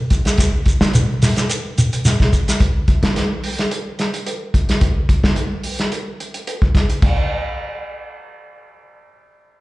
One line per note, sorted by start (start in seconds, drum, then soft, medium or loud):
0.10 kick medium
0.10 closed hi-hat medium
0.10 shekere soft
0.25 snare soft
0.25 closed hi-hat soft
0.25 shekere medium
0.38 kick medium
0.38 snare soft
0.38 closed hi-hat medium
0.38 shekere medium
0.66 kick medium
0.66 closed hi-hat soft
0.66 shekere soft
0.81 kick medium
0.81 snare medium
0.81 shekere soft
0.93 closed hi-hat medium
0.93 shekere medium
1.22 snare soft
1.22 open hi-hat medium
1.22 shekere medium
1.36 snare soft
1.36 closed hi-hat medium
1.36 shekere medium
1.50 closed hi-hat medium
1.50 shekere medium
1.78 closed hi-hat medium
1.78 shekere medium
1.93 closed hi-hat soft
1.93 shekere soft
2.05 snare soft
2.05 closed hi-hat medium
2.05 shekere medium
2.20 kick medium
2.20 snare soft
2.33 kick medium
2.33 closed hi-hat soft
2.33 shekere soft
2.48 snare soft
2.48 closed hi-hat medium
2.48 shekere medium
2.60 kick medium
2.60 closed hi-hat medium
2.88 kick medium
2.88 closed hi-hat soft
3.03 kick medium
3.03 snare medium
3.03 closed hi-hat medium
3.16 snare soft
3.16 closed hi-hat medium
3.44 open hi-hat medium
3.58 snare soft
3.58 closed hi-hat medium
3.71 closed hi-hat medium
3.99 snare soft
3.99 closed hi-hat medium
4.14 closed hi-hat medium
4.26 closed hi-hat medium
4.54 kick medium
4.54 closed hi-hat medium
4.69 snare soft
4.69 closed hi-hat medium
4.81 kick medium
4.81 closed hi-hat medium
5.09 kick medium
5.09 closed hi-hat medium
5.24 kick medium
5.24 snare medium
5.36 closed hi-hat medium
5.63 open hi-hat medium
5.79 snare soft
5.79 closed hi-hat soft
5.92 closed hi-hat medium
6.20 closed hi-hat soft
6.34 closed hi-hat soft
6.47 closed hi-hat medium
6.62 kick medium
6.75 kick medium
6.75 snare soft
6.75 closed hi-hat soft
6.90 closed hi-hat soft
7.02 kick medium
7.02 crash medium